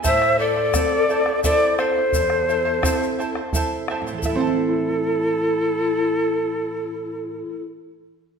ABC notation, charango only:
X:1
M:3/4
L:1/16
Q:1/4=86
K:Am
V:1 name="Charango"
[EAcea]2 [Ecea] [Eca] [Ecea]2 [Ecea] [Eca] [EAcea]2 [Ecea] [Eca] | [Ecea]2 [Ecea] [Eca] [EAcea]2 [Ecea] [Eca] [Ecea]2 [Ecea] [Eca] | [EAcea]12- | [EAcea]12 |]